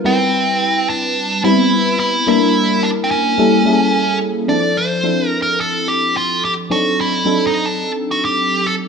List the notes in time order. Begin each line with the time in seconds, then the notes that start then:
0.04 G3 C4 E4 B4
0.90 D4
1.44 G3 B3 C4 E4 B4
2.00 E4
2.27 G3 A#3 D4 E4 A#4
2.83 D4
3.04 C4
3.11 C#4
3.38 G3 A#3 C#4 E4 A4
3.65 G3 A#3 C#4 E4 G#4
3.73 A4
4.48 F3 C4 D4 E4 A4 D5
4.77 C5
5.03 F3 C4 D4 E4 A4
5.27 A#4
5.42 A#4
5.60 A4
5.88 G4
6.17 F4
6.45 G4
6.70 F#3 C4 D4 D#4 F#4 A4
7.01 E4
7.25 F#3 C4 D4 D#4 A4
7.47 D#4
7.66 D4
8.11 F#4
8.25 G4
8.66 A4